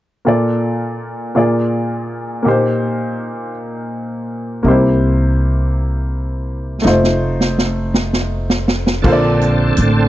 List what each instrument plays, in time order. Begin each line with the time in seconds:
0.25 grand piano A#2 A#3 F4 A4 D5
1.35 grand piano A#2 A#3 F4 G#4 D5
2.42 grand piano A#2 A#3 D#4 G4
2.48 grand piano C5
4.63 upright bass C2, grand piano C3 A#3 D#4 G4
4.68 grand piano E4 C5
6.82 upright bass F1, grand piano A3 D#4 F4, snare
6.88 grand piano C5
7.04 snare
7.40 snare
7.58 snare
7.94 snare
8.13 snare
8.50 snare
8.68 snare
8.87 snare
9.02 upright bass A#1, tonewheel organ D3 C4 A4, grand piano D3 A#3 F4 A4 C5, kick, crash
9.12 grand piano D5
9.41 closed hi-hat
9.77 upright bass A1, closed hi-hat